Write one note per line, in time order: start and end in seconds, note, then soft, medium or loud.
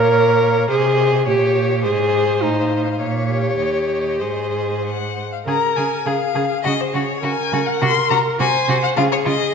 0.00 0.69 A#2 medium
0.00 0.68 A#4 medium
0.00 0.66 C#5 medium
0.00 0.66 F5 medium
0.70 1.28 C3 medium
0.70 1.26 G#4 medium
0.70 1.24 C5 medium
0.70 1.24 D#5 medium
1.27 1.86 A#2 medium
1.27 1.83 G4 medium
1.27 1.81 C#5 medium
1.84 2.43 G#2 medium
1.84 2.44 G#4 medium
1.84 2.96 C5 medium
1.84 2.38 D#5 medium
2.41 2.99 A2 medium
2.41 3.00 D#4 medium
2.41 3.56 F5 medium
3.00 3.58 A#2 medium
3.00 4.18 C#5 medium
3.30 4.22 G4 medium
3.59 4.23 D#2 soft
3.59 4.80 D#5 soft
4.21 5.26 G#2 soft
4.21 5.16 G#4 medium
4.21 5.22 C5 soft
4.85 5.28 F#5 medium
5.32 5.38 F5 medium
5.46 5.54 C#3 medium
5.46 5.56 G#4 medium
5.46 6.07 A#4 medium
5.46 5.78 A#5 loud
5.76 5.85 C#3 medium
5.76 5.85 G#4 soft
5.76 6.08 G#5 medium
6.06 6.14 C#3 medium
6.06 7.22 G#4 medium
6.06 6.15 G#4 medium
6.06 6.63 F5 medium
6.35 6.43 C#3 medium
6.35 6.44 G#4 medium
6.64 6.73 C#3 medium
6.64 6.72 F#4 medium
6.64 6.82 D#5 loud
6.80 6.94 C5 medium
6.93 7.02 C#3 medium
6.93 7.03 F#4 medium
6.93 7.24 C#5 medium
7.23 7.31 C#3 medium
7.23 7.31 F#4 medium
7.23 8.41 A#4 medium
7.23 7.68 G#5 medium
7.52 7.60 C#3 medium
7.52 7.61 F#4 medium
7.66 7.82 F#5 medium
7.81 7.90 C3 medium
7.81 7.90 F#4 medium
7.81 8.10 C6 loud
8.10 8.18 C3 medium
8.10 8.19 F#4 medium
8.10 8.18 A#5 loud
8.39 8.47 C3 medium
8.39 8.48 F#4 medium
8.39 8.97 C5 medium
8.39 8.82 G#5 loud
8.69 8.77 C3 medium
8.69 8.77 F#4 medium
8.83 8.89 F#5 medium
8.96 9.05 C#3 medium
8.96 9.05 F4 medium
8.96 9.54 G#4 medium
8.96 9.02 F5 loud
9.12 9.17 C#5 medium
9.25 9.33 C#3 medium
9.25 9.34 F4 medium
9.25 9.53 D#5 loud